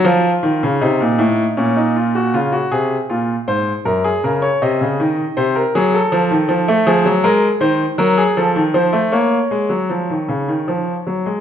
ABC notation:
X:1
M:3/4
L:1/16
Q:1/4=79
K:Dbmix
V:1 name="Grand piano"
F4 E4 D E F G | F G A2 F2 =c2 B A B d | e4 =c B A =A4- A | [K:Bbm] A2 B2 c2 B A =A2 c2 |
d8- d2 z2 |]
V:2 name="Grand piano" clef=bass
F,2 E, D, =C, B,, =A,,2 B,,4 | D,2 =C,2 B,,2 A,,2 G,,2 D,2 | =C, D, E,2 C,2 G,2 F, E, F, =A, | [K:Bbm] F, G, A,2 E,2 G,2 F, E, F, =A, |
B,2 A, G, F, E, D, E, F,2 G, A, |]